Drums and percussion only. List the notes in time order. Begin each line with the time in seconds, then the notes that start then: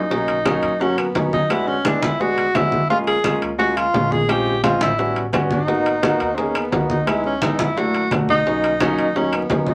0.11 high bongo, high conga
0.28 high conga, high timbale
0.45 high bongo, high conga, high timbale, low timbale, claves
0.63 high conga, high timbale
0.80 high bongo, high conga
0.98 high conga, high timbale, claves
1.15 high bongo, low bongo, high conga, high timbale, low timbale
1.33 high conga
1.50 high bongo, high conga, high timbale, claves
1.68 high bongo, high conga
1.85 high bongo, high conga, high timbale, low timbale, claves
2.03 high bongo, high conga, high timbale
2.20 high bongo, high conga
2.38 high conga, high timbale
2.55 high bongo, low bongo, high conga, high timbale, low timbale, claves
2.72 high bongo, high conga
2.90 high bongo, high conga
3.07 high conga, high timbale
3.24 high bongo, high conga, high timbale, low timbale, claves
3.42 high conga, high timbale
3.59 high bongo, high conga
3.77 high conga, high timbale, claves
3.94 high bongo, low bongo, high conga, high timbale, low timbale
4.12 high conga
4.29 high bongo, high conga, high timbale, claves
4.46 high bongo, high conga
4.64 high bongo, high conga, high timbale, low timbale, claves
4.81 high bongo, high conga, high timbale
4.99 high bongo, high conga
5.16 high conga, high timbale
5.33 high bongo, low bongo, high conga, high timbale, low timbale, claves
5.51 high bongo, high conga
5.68 high bongo, high conga
5.86 high conga, high timbale
6.03 high bongo, high conga, high timbale, low timbale, claves
6.20 high conga, high timbale
6.38 high bongo, high conga
6.55 high conga, high timbale, claves
6.72 high bongo, low bongo, high conga, high timbale, low timbale
6.90 high conga
7.07 high bongo, high timbale, claves
7.24 high bongo, high conga
7.42 high bongo, high conga, high timbale, low timbale, claves
7.59 high bongo, high conga, high timbale
7.77 high bongo, high conga
7.94 high conga, high timbale
8.11 high bongo, low bongo, high conga, high timbale, low timbale, claves
8.29 high bongo, high conga
8.46 high bongo, high conga
8.63 high conga, high timbale
8.80 high bongo, high conga, high timbale, low timbale, claves
8.98 high conga, high timbale
9.16 high bongo, high conga
9.32 high conga, high timbale, claves
9.50 high bongo, low bongo, high conga, high timbale, low timbale
9.67 high conga